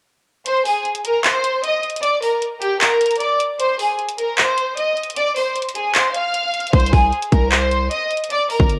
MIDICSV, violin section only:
0, 0, Header, 1, 2, 480
1, 0, Start_track
1, 0, Key_signature, -3, "minor"
1, 0, Tempo, 392157
1, 562, Time_signature, 4, 2, 24, 8
1, 10761, End_track
2, 0, Start_track
2, 0, Title_t, "Violin section"
2, 0, Program_c, 0, 48
2, 561, Note_on_c, 0, 72, 100
2, 571, Note_on_c, 0, 84, 84
2, 788, Note_off_c, 0, 72, 0
2, 794, Note_off_c, 0, 84, 0
2, 799, Note_on_c, 0, 68, 92
2, 810, Note_on_c, 0, 80, 66
2, 1027, Note_off_c, 0, 68, 0
2, 1033, Note_off_c, 0, 80, 0
2, 1280, Note_on_c, 0, 70, 87
2, 1290, Note_on_c, 0, 82, 65
2, 1508, Note_off_c, 0, 70, 0
2, 1513, Note_off_c, 0, 82, 0
2, 1521, Note_on_c, 0, 72, 92
2, 1530, Note_on_c, 0, 84, 75
2, 1973, Note_off_c, 0, 72, 0
2, 1978, Note_off_c, 0, 84, 0
2, 2004, Note_on_c, 0, 75, 95
2, 2014, Note_on_c, 0, 87, 64
2, 2230, Note_off_c, 0, 75, 0
2, 2235, Note_off_c, 0, 87, 0
2, 2483, Note_on_c, 0, 74, 109
2, 2493, Note_on_c, 0, 86, 79
2, 2709, Note_off_c, 0, 74, 0
2, 2714, Note_off_c, 0, 86, 0
2, 2725, Note_on_c, 0, 70, 79
2, 2734, Note_on_c, 0, 82, 59
2, 2950, Note_off_c, 0, 70, 0
2, 2955, Note_off_c, 0, 82, 0
2, 3203, Note_on_c, 0, 67, 86
2, 3214, Note_on_c, 0, 79, 69
2, 3429, Note_off_c, 0, 67, 0
2, 3435, Note_off_c, 0, 79, 0
2, 3442, Note_on_c, 0, 70, 89
2, 3452, Note_on_c, 0, 82, 62
2, 3893, Note_off_c, 0, 70, 0
2, 3899, Note_off_c, 0, 82, 0
2, 3924, Note_on_c, 0, 74, 82
2, 3932, Note_on_c, 0, 86, 65
2, 4149, Note_off_c, 0, 74, 0
2, 4154, Note_off_c, 0, 86, 0
2, 4401, Note_on_c, 0, 72, 94
2, 4412, Note_on_c, 0, 84, 77
2, 4628, Note_off_c, 0, 72, 0
2, 4634, Note_off_c, 0, 84, 0
2, 4644, Note_on_c, 0, 68, 73
2, 4653, Note_on_c, 0, 80, 57
2, 4870, Note_off_c, 0, 68, 0
2, 4875, Note_off_c, 0, 80, 0
2, 5124, Note_on_c, 0, 70, 82
2, 5133, Note_on_c, 0, 82, 61
2, 5350, Note_off_c, 0, 70, 0
2, 5355, Note_off_c, 0, 82, 0
2, 5362, Note_on_c, 0, 72, 88
2, 5372, Note_on_c, 0, 84, 64
2, 5813, Note_off_c, 0, 72, 0
2, 5818, Note_off_c, 0, 84, 0
2, 5844, Note_on_c, 0, 75, 80
2, 5853, Note_on_c, 0, 87, 65
2, 6070, Note_off_c, 0, 75, 0
2, 6075, Note_off_c, 0, 87, 0
2, 6322, Note_on_c, 0, 74, 108
2, 6331, Note_on_c, 0, 86, 92
2, 6549, Note_off_c, 0, 74, 0
2, 6554, Note_off_c, 0, 86, 0
2, 6561, Note_on_c, 0, 72, 81
2, 6572, Note_on_c, 0, 84, 69
2, 6788, Note_off_c, 0, 72, 0
2, 6794, Note_off_c, 0, 84, 0
2, 7040, Note_on_c, 0, 68, 83
2, 7049, Note_on_c, 0, 80, 67
2, 7267, Note_off_c, 0, 68, 0
2, 7273, Note_off_c, 0, 80, 0
2, 7282, Note_on_c, 0, 72, 85
2, 7292, Note_on_c, 0, 84, 61
2, 7509, Note_off_c, 0, 72, 0
2, 7514, Note_off_c, 0, 84, 0
2, 7522, Note_on_c, 0, 77, 88
2, 7532, Note_on_c, 0, 89, 63
2, 8198, Note_off_c, 0, 77, 0
2, 8204, Note_off_c, 0, 89, 0
2, 8241, Note_on_c, 0, 72, 102
2, 8251, Note_on_c, 0, 84, 84
2, 8468, Note_off_c, 0, 72, 0
2, 8473, Note_off_c, 0, 84, 0
2, 8483, Note_on_c, 0, 68, 88
2, 8493, Note_on_c, 0, 80, 68
2, 8709, Note_off_c, 0, 68, 0
2, 8715, Note_off_c, 0, 80, 0
2, 8961, Note_on_c, 0, 70, 86
2, 8971, Note_on_c, 0, 82, 62
2, 9188, Note_off_c, 0, 70, 0
2, 9193, Note_off_c, 0, 82, 0
2, 9202, Note_on_c, 0, 72, 87
2, 9212, Note_on_c, 0, 84, 74
2, 9653, Note_off_c, 0, 72, 0
2, 9658, Note_off_c, 0, 84, 0
2, 9684, Note_on_c, 0, 75, 96
2, 9692, Note_on_c, 0, 87, 66
2, 9910, Note_off_c, 0, 75, 0
2, 9914, Note_off_c, 0, 87, 0
2, 10164, Note_on_c, 0, 74, 103
2, 10174, Note_on_c, 0, 86, 78
2, 10390, Note_off_c, 0, 74, 0
2, 10395, Note_off_c, 0, 86, 0
2, 10403, Note_on_c, 0, 70, 77
2, 10414, Note_on_c, 0, 82, 59
2, 10629, Note_off_c, 0, 70, 0
2, 10635, Note_off_c, 0, 82, 0
2, 10761, End_track
0, 0, End_of_file